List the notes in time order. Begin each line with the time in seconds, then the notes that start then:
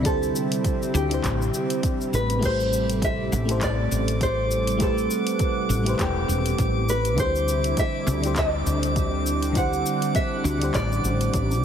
Already playing: D2 C3 D3 G3 C4 D4 E4 G4
0.02 D3 C4 D4 E4, kick, closed hi-hat
0.06 G4 A4 C5, shaker
0.23 shaker
0.36 shaker
0.52 closed hi-hat, shaker
0.64 kick, closed hi-hat, shaker
0.83 shaker
0.94 D2 G4, shaker
1.08 D3 D4 E4, closed hi-hat
1.12 G4 C5, shaker
1.24 A1, kick, clap, closed hi-hat, shaker
1.42 shaker
1.54 shaker
1.70 closed hi-hat, shaker
1.83 kick, closed hi-hat, shaker
2.01 shaker
2.13 A1 B4, shaker
2.30 closed hi-hat, shaker
2.39 A3 E4 G4 D6, kick, closed hi-hat, crash
2.43 A4 C5, shaker
2.60 shaker
2.73 shaker
2.90 closed hi-hat, shaker
3.02 E5, kick, closed hi-hat, shaker
3.32 A1, shaker
3.45 A3 E4 G4, closed hi-hat
3.50 A4 C5, shaker
3.61 D5, kick, clap, closed hi-hat, shaker
3.91 A1, shaker
4.08 closed hi-hat, shaker
4.21 C5, kick, closed hi-hat, shaker
4.51 shaker
4.67 closed hi-hat, shaker
4.77 A3 E4 G4 F#5, kick, closed hi-hat, shaker
4.82 A4 B4 C5
4.98 shaker
5.11 shaker
5.27 closed hi-hat, shaker
5.39 kick, closed hi-hat, shaker
5.69 A1, shaker
5.83 A3 E4 G4, closed hi-hat, shaker
5.88 B4 C5
5.99 E1 G4, kick, clap, closed hi-hat, shaker
6.28 E1, shaker
6.46 closed hi-hat, shaker
6.58 A1, kick, closed hi-hat, shaker
6.89 B4, shaker
7.05 closed hi-hat, shaker
7.15 D2 D3 C4 D4 E4, kick, closed hi-hat, shaker
7.19 G4 C5
7.36 shaker
7.48 shaker
7.64 closed hi-hat, shaker
7.77 E5, kick, closed hi-hat, shaker
8.07 D2, shaker
8.21 D3 D4 E4, closed hi-hat, shaker
8.25 G4 C5
8.36 D5, kick, clap, closed hi-hat, shaker
8.66 D2, shaker
8.83 closed hi-hat, shaker
8.96 kick, closed hi-hat, shaker
9.27 shaker
9.43 closed hi-hat, shaker
9.52 D3 D4 E4 F#5, kick, closed hi-hat, shaker
9.57 G4 C5 F#5
9.73 shaker
9.86 shaker
10.02 closed hi-hat, shaker
10.15 E5, kick, closed hi-hat, shaker
10.44 D2, shaker
10.58 D3 D4 E4, closed hi-hat
10.62 G4 C5, shaker
10.74 A1 D5, kick, clap, closed hi-hat, shaker
10.92 shaker
11.03 A1, shaker
11.21 closed hi-hat, shaker
11.34 A1, kick, closed hi-hat, shaker
11.51 shaker